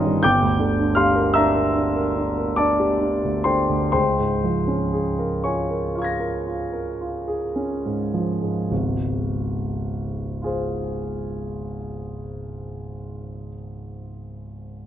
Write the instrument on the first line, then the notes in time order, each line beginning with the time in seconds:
grand piano
Already playing: G1 G2 D#3 C#4 D#4 F4 C#5 D#5 F5 G5 A#5 C6 C#6 D#6 F6 G6
0.06 G2
0.23 G1 G5 D6 G6
0.42 D2
0.60 D3
0.79 D4
0.95 G4 F5 C6 F6
1.16 A#4
1.34 D4 E5 A#5 E6
1.54 A#4
1.75 D4
1.96 A#4
2.15 D4
2.38 A#4
2.56 D4 D5 A5 D6
2.80 G4
3.00 D4
3.24 D2
3.44 D3 C5 G5 C6
3.69 D2
3.92 C#2 C5 G5 C6
4.19 G#2
4.44 F3
4.68 C#4
4.93 G#4
5.19 A#4
5.44 F4 C#5 G#5 C#6
5.70 A#4
5.95 F4 F5 C#6
6.02 G#6 A#6
6.20 A#4
6.47 F4
6.73 A#4
7.01 F4
7.28 G#4
7.56 C#4
7.85 G#2
8.14 F3
8.42 G#2
8.71 C#1 G#1
10.42 F4 G#4
10.46 C5